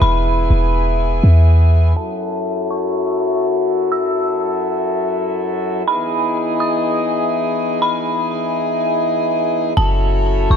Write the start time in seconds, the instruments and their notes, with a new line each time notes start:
Already playing: harmonium E3 B3 G#4
0.02 808-style bass E1, harmonium E4, synth bell B5
0.50 808-style bass E1
1.24 808-style bass E2
1.97 harmonium F#2 F#3 E4 A4, synth bell A5
2.71 synth bell C#6
3.92 synth bell E6
5.87 harmonium E3 D#4 G#4, synth bell B5
6.60 synth bell D#6
7.82 synth bell B5
9.77 808-style bass F#1, harmonium C#4 E4 A4, synth bell A5
10.50 808-style bass F#1, synth bell C#6